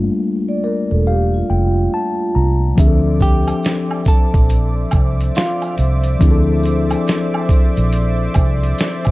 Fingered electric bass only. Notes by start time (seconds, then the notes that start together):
0.92 E1
1.50 F1
2.36 C2
2.78 D2
4.34 A#1
4.93 C2
5.79 C2
6.21 D2
7.78 A#1
8.36 C2